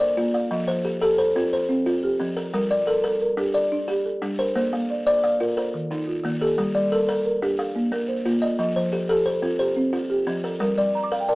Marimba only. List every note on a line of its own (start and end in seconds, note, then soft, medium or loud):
0.00 0.34 A#4 medium
0.00 0.51 C5 medium
0.17 0.51 A#3 medium
0.34 0.85 D5 medium
0.51 0.85 D#5 medium
0.68 1.02 F3 medium
0.85 1.18 A4 medium
1.02 1.53 G4 medium
1.19 1.53 A4 medium
1.36 1.85 F4 medium
1.69 2.03 C4 medium
1.86 2.37 F4 medium
2.03 2.54 G4 medium
2.20 2.54 F3 medium
2.38 2.88 A4 medium
2.54 2.87 A#4 medium
2.71 3.05 G3 medium
2.88 3.20 A#4 medium
3.05 3.54 A4 medium
3.21 3.55 A#4 medium
3.38 3.87 G4 medium
3.55 4.04 A4 medium
3.72 4.06 D4 medium
3.88 4.39 G4 medium
4.05 4.56 A4 medium
4.23 4.56 G3 medium
4.39 4.90 A#4 medium
4.56 4.90 C5 medium
4.73 5.07 A#3 medium
4.90 5.22 D5 medium
5.07 5.56 C5 medium
5.23 5.57 D5 medium
5.40 5.91 A#4 medium
5.57 5.91 C5 medium
5.74 6.08 D#3 medium
5.91 6.41 D#4 medium
6.08 6.58 F4 medium
6.24 6.58 D#3 medium
6.41 6.91 G4 medium
6.58 6.92 A4 medium
6.75 7.08 G3 medium
6.92 7.24 A#4 medium
7.08 7.58 A4 medium
7.25 7.59 A#4 medium
7.42 7.92 G4 medium
7.75 8.09 A#3 medium
7.92 8.43 A#4 medium
8.08 8.59 C5 medium
8.26 8.59 A#3 medium
8.42 8.93 D5 medium
8.59 8.93 D#5 medium
8.76 9.10 F3 medium
8.93 9.25 A4 medium
9.10 9.58 G4 medium
9.26 9.60 A4 medium
9.43 9.91 F4 medium
9.59 10.09 G4 medium
9.76 10.10 C4 medium
9.93 10.44 F4 medium
10.10 10.61 G4 medium
10.27 10.61 F3 medium
10.44 10.95 A4 medium
10.61 10.95 A#4 medium
10.78 11.12 G3 medium
10.95 11.11 A#5 medium
11.04 11.19 D6 medium
11.12 11.28 F5 medium
11.20 11.35 G5 medium
11.29 11.35 A#4 medium
11.29 11.35 A5 medium